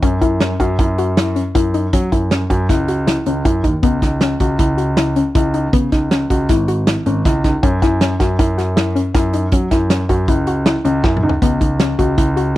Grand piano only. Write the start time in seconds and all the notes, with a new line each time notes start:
0.03 F#2
0.21 F#2
0.60 F#2
0.79 F#2
1.55 F#2
1.93 F#3
2.12 F#2
2.50 F#2
2.69 C#2
3.26 C#2
3.45 F#2
3.64 D#2
3.83 C#2
4.02 C#2
4.40 C#2
4.59 C#2
5.35 C#2
5.73 C#3
5.92 C#2
6.30 C#2
6.49 G#1
7.06 G#1
7.25 C#2
7.44 C#2
7.63 F#2
7.82 F#2
8.20 F#2
8.39 F#2
9.14 F#2
9.52 F#3
9.71 F#2
10.09 F#2
10.28 C#2
10.85 C#2
11.04 F#2
11.23 C#2
11.42 C#2
11.61 C#2
11.99 C#2
12.18 C#2